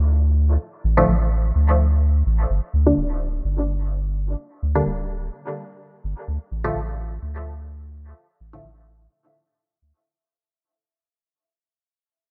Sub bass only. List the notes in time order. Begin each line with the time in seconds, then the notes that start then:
Already playing: D2
0.84 A1
1.08 A1
1.55 D2
2.26 A1
2.50 G1
2.73 D2
2.97 D1
3.44 G1
4.63 D2
4.86 D1
6.04 G1
6.28 D2
6.51 A1
6.75 A1
7.22 D2
8.40 A1
8.64 A1
9.82 D2